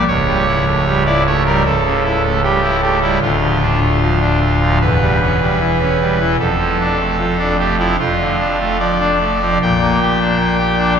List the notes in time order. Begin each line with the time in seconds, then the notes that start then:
0.07 C#1 C#2 C#5
0.27 G3
0.47 E4
0.67 A3
0.87 G3
1.05 E4 D5
1.26 A3 C#5
1.46 G3 A#4
1.65 C#1 C#2 A4
1.85 C#3
2.04 E4
2.23 A3
2.43 G3 G4
2.63 E4
2.82 A3 G4
3.01 G3 E4
3.21 D1 D2 F4
3.42 F3
3.61 D4
3.81 A3
4.01 F3
4.21 D4
4.40 A3
4.61 F3
4.82 E1 E2 B4
5.01 G3
5.21 C#4
5.41 G3
5.60 E3
5.80 C#4
6.01 G3
6.20 E3
6.39 F1 F2 A4
6.59 F3
6.80 D4
6.98 A3
7.19 F3
7.38 D4
7.59 A3 G4
7.78 F3 E4
7.99 F1 F2 F4
8.19 D3
8.38 D4
8.59 A3
8.79 F3 D5
8.99 D4
9.20 A3
9.41 F3
9.61 A#1 A#2 G5
9.81 A#3
10.01 G4
10.20 D4
10.39 A#3
10.58 G4
10.78 D4